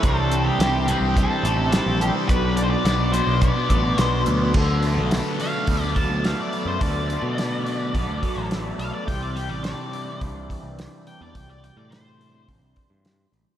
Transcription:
Already playing: transistor combo organ E3
0.03 picked electric bass C2, distorted electric guitar C3 G3 C4, transistor combo organ D4 G4 C5, lead electric guitar A4, kick, closed hi-hat
0.32 closed hi-hat
0.48 lead electric guitar G4
0.59 picked electric bass C2, distorted electric guitar C3 G3 C4, snare, closed hi-hat
0.74 muted distorted electric guitar stroke
0.87 distorted electric guitar C3 G3 C4, lead electric guitar B4, closed hi-hat
1.01 picked electric bass C2
1.17 lead electric guitar A4, kick, closed hi-hat
1.30 distorted electric guitar G3 C4
1.43 picked electric bass A1, distorted electric guitar C3 G3 C4, closed hi-hat
1.58 muted distorted electric guitar stroke
1.71 distorted electric guitar C3 G3 C4, lead electric guitar A4, snare, closed hi-hat
1.86 picked electric bass A#1
2.00 distorted electric guitar C3 G3 C4, lead electric guitar G4, closed hi-hat
2.14 distorted electric guitar G3 C4
2.29 picked electric bass B1, distorted electric guitar B2 F#3 B3, transistor combo organ F#3 D4 B4 D5, lead electric guitar B4, kick, closed hi-hat
2.57 lead electric guitar D5, closed hi-hat
2.64 lead electric guitar C5
2.70 lead electric guitar D5
2.85 picked electric bass B1, distorted electric guitar B2 F#3 B3, snare, closed hi-hat
2.99 muted distorted electric guitar stroke
3.12 distorted electric guitar B2 F#3 B3, lead electric guitar C5, closed hi-hat
3.27 picked electric bass B1
3.42 lead electric guitar D5, kick, closed hi-hat
3.55 distorted electric guitar F#3 B3
3.68 picked electric bass A1, distorted electric guitar B2 F#3 B3, kick, closed hi-hat
3.83 muted distorted electric guitar stroke
3.97 picked electric bass B1, distorted electric guitar B2 F#3 B3, lead electric guitar C5, snare, closed hi-hat
4.26 picked electric bass D2, distorted electric guitar B2 F#3 B3, closed hi-hat
4.41 distorted electric guitar F#3 B3
4.54 picked electric bass D2, distorted electric guitar D3, transistor combo organ F#3 B3 A4 D5, kick, crash
4.83 distorted electric guitar A3, open hi-hat
4.97 picked electric bass B1
5.11 distorted electric guitar B3, snare, open hi-hat
5.40 distorted electric guitar F#4, lead electric guitar F5, open hi-hat
5.67 picked electric bass D2, distorted electric guitar B3, kick, open hi-hat
5.81 picked electric bass D2, lead electric guitar D5
5.96 distorted electric guitar F#3, lead electric guitar A5, kick, open hi-hat
6.09 picked electric bass D2
6.24 distorted electric guitar A3, lead electric guitar F5, snare, open hi-hat
6.41 lead electric guitar D5
6.53 distorted electric guitar B3, open hi-hat
6.65 picked electric bass F#2, lead electric guitar C5
6.81 picked electric bass D2, distorted electric guitar D3, lead electric guitar D5, kick, open hi-hat
7.09 distorted electric guitar A3, open hi-hat
7.22 picked electric bass B2
7.37 distorted electric guitar B3, snare, open hi-hat
7.65 distorted electric guitar F#4, open hi-hat
7.94 picked electric bass B1, distorted electric guitar B3, kick, open hi-hat
8.08 picked electric bass D2
8.23 distorted electric guitar F#3, kick, open hi-hat
8.37 picked electric bass A1
8.51 distorted electric guitar A3, snare, open hi-hat
8.79 picked electric bass B1, distorted electric guitar B3, lead electric guitar F5, open hi-hat
8.94 lead electric guitar D5
9.06 picked electric bass C2, distorted electric guitar C3, transistor combo organ E3 C4 G4 D5, lead electric guitar G5, kick, open hi-hat
9.22 lead electric guitar D5
9.36 distorted electric guitar G3, lead electric guitar G5, open hi-hat
9.49 picked electric bass A1, lead electric guitar D5
9.64 distorted electric guitar D4, lead electric guitar D5, snare, open hi-hat
9.93 distorted electric guitar E4, open hi-hat
10.21 picked electric bass C2, distorted electric guitar D4, kick, open hi-hat
10.35 picked electric bass C2
10.50 distorted electric guitar E3, kick, open hi-hat
10.63 picked electric bass C2
10.79 distorted electric guitar G3, snare, open hi-hat
11.07 distorted electric guitar D4, lead electric guitar G5, open hi-hat
11.21 picked electric bass E2, lead electric guitar D5
11.35 picked electric bass C2, distorted electric guitar C3, transistor combo organ F#4, lead electric guitar G5, kick, open hi-hat
11.49 lead electric guitar D5
11.63 distorted electric guitar G3, lead electric guitar G5, open hi-hat
11.77 picked electric bass A2, lead electric guitar D5
11.90 distorted electric guitar D4, lead electric guitar C5, snare, open hi-hat
12.20 distorted electric guitar E4, open hi-hat
12.48 picked electric bass A1, distorted electric guitar D4, kick, open hi-hat
12.61 picked electric bass C2
12.76 distorted electric guitar E3, kick, open hi-hat
12.90 picked electric bass G2
13.04 distorted electric guitar G3, snare, open hi-hat
13.32 picked electric bass A1, distorted electric guitar D4, open hi-hat

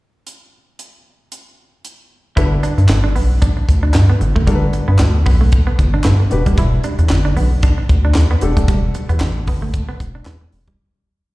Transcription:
0.27 closed hi-hat
0.79 closed hi-hat
1.32 closed hi-hat
1.85 closed hi-hat
2.36 analog synth bass G1, grand piano D4 F#4 A4 B4, clean electric guitar E4, kick, closed hi-hat
2.63 clean electric guitar D4, closed hi-hat
2.78 analog synth bass G2, muted clean electric guitar stroke, closed hi-hat
2.89 analog synth bass G1, muted clean electric guitar stroke, snare, clap, closed hi-hat
3.04 clean electric guitar D4
3.16 analog synth bass B1, clean electric guitar B3, open hi-hat
3.42 clean electric guitar D4, kick, closed hi-hat
3.57 muted clean electric guitar stroke
3.69 analog synth bass D2, kick, closed hi-hat
3.83 clean electric guitar D4
3.94 analog synth bass G2, snare, clap, closed hi-hat
4.10 clean electric guitar B3
4.21 analog synth bass G1, muted clean electric guitar stroke, closed hi-hat
4.36 analog synth bass F#1, clean electric guitar A3, kick
4.47 analog synth bass G1, clean electric guitar G3, grand piano D4 F#4 A4 A#4, kick, closed hi-hat
4.55 grand piano B4
4.73 muted clean electric guitar stroke, closed hi-hat
4.88 analog synth bass G2, clean electric guitar B3
4.99 analog synth bass D2, muted clean electric guitar stroke, snare, clap, closed hi-hat
5.26 analog synth bass B1, clean electric guitar B3, kick, open hi-hat
5.41 clean electric guitar A3
5.52 kick, closed hi-hat
5.67 clean electric guitar B3
5.79 analog synth bass G1, muted clean electric guitar stroke, kick, closed hi-hat
5.94 clean electric guitar D4
6.04 analog synth bass G2, clean electric guitar B3, snare, clap, closed hi-hat
6.20 muted clean electric guitar stroke
6.30 analog synth bass E1, grand piano D4 F#4 G4 B4, closed hi-hat
6.46 analog synth bass D#1, clean electric guitar G3, kick, closed hi-hat
6.57 analog synth bass E1, clean electric guitar E4, kick, closed hi-hat
6.84 clean electric guitar D4, closed hi-hat
6.99 analog synth bass E2, muted clean electric guitar stroke, closed hi-hat
7.09 analog synth bass G1, muted clean electric guitar stroke, snare, clap, closed hi-hat
7.25 clean electric guitar D4
7.36 analog synth bass B1, clean electric guitar B3, open hi-hat
7.63 clean electric guitar D4, kick, closed hi-hat
7.78 muted clean electric guitar stroke
7.89 analog synth bass D2, kick, closed hi-hat
8.05 clean electric guitar D4
8.15 analog synth bass E2, snare, clap, closed hi-hat
8.31 clean electric guitar B3
8.41 analog synth bass E1, grand piano D4 F#4 G4 A4, muted clean electric guitar stroke, closed hi-hat
8.57 analog synth bass D#1, clean electric guitar A3, kick, closed hi-hat
8.68 analog synth bass E1, clean electric guitar G3, kick, closed hi-hat
8.94 muted clean electric guitar stroke, closed hi-hat
9.09 analog synth bass E2, clean electric guitar B3, closed hi-hat
9.20 analog synth bass A1, muted clean electric guitar stroke, snare, clap, closed hi-hat
9.47 analog synth bass G1, clean electric guitar B3, kick, open hi-hat
9.62 clean electric guitar A3
9.74 kick, closed hi-hat
9.89 clean electric guitar B3
10.00 analog synth bass E1, muted clean electric guitar stroke, kick, closed hi-hat
10.15 clean electric guitar D4
10.25 analog synth bass E2, clean electric guitar B3, snare, clap, closed hi-hat
10.41 muted clean electric guitar stroke
10.52 analog synth bass E1, open hi-hat
10.67 analog synth bass D#1, clean electric guitar G3, kick

